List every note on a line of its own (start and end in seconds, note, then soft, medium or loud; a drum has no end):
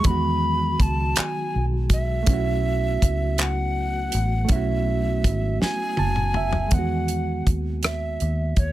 0.00 2.23 D#3 medium
0.00 6.67 F#3 medium
0.00 2.21 G#3 medium
0.00 2.23 G#3 medium
0.00 2.23 B3 medium
0.00 6.67 F#4 medium
0.04 0.75 E2 medium
0.04 2.24 D#3 medium
0.04 0.83 B5 loud
0.04 kick loud
0.04 closed hi-hat medium
0.10 2.26 F#4 medium
0.80 1.13 C#2 medium
0.80 1.21 A5 loud
0.80 kick medium
0.80 closed hi-hat medium
1.16 1.65 G#5 loud
1.16 muted fingered electric bass stroke medium
1.16 clap loud
1.16 closed hi-hat medium
1.55 2.24 B1 medium
1.90 3.43 E5 loud
1.90 kick medium
1.90 closed hi-hat medium
2.23 4.43 A3 medium
2.23 4.45 C#4 medium
2.23 closed hi-hat medium
2.27 2.98 B1 loud
2.27 6.68 A3 medium
2.27 6.68 B3 medium
2.27 4.47 E4 medium
2.27 kick loud
2.33 4.49 F#4 medium
3.02 4.09 C#2 medium
3.02 kick medium
3.02 closed hi-hat medium
3.38 4.54 F#5 medium
3.38 clap loud
3.38 closed hi-hat medium
4.12 4.47 A1 medium
4.12 closed hi-hat medium
4.45 6.65 A3 medium
4.45 6.67 C#4 medium
4.45 closed hi-hat medium
4.49 5.27 B1 loud
4.49 6.69 E4 medium
4.49 5.61 E5 medium
4.49 kick loud
4.56 6.71 F#4 medium
5.24 5.58 G#1 medium
5.24 kick medium
5.24 closed hi-hat medium
5.62 6.75 G#5 loud
5.62 snare medium
5.97 6.68 F#1 medium
5.97 6.33 A5 medium
5.97 high tom medium
6.16 mid tom medium
6.34 6.70 E5 medium
6.34 mid tom medium
6.53 floor tom loud
6.68 8.72 G#3 medium
6.68 8.72 B3 medium
6.68 kick loud
6.68 closed hi-hat medium
6.72 7.42 E2 medium
6.72 8.72 D#3 medium
6.72 7.47 F#5 medium
6.79 8.72 F#4 medium
7.08 closed hi-hat medium
7.47 8.17 D#2 medium
7.47 kick medium
7.47 closed hi-hat soft
7.83 8.61 E5 medium
7.83 cross-stick loud
7.83 closed hi-hat medium
8.20 8.54 D#2 medium
8.20 closed hi-hat soft
8.56 8.72 D#2 medium
8.56 8.72 C#5 medium
8.56 kick medium
8.56 closed hi-hat soft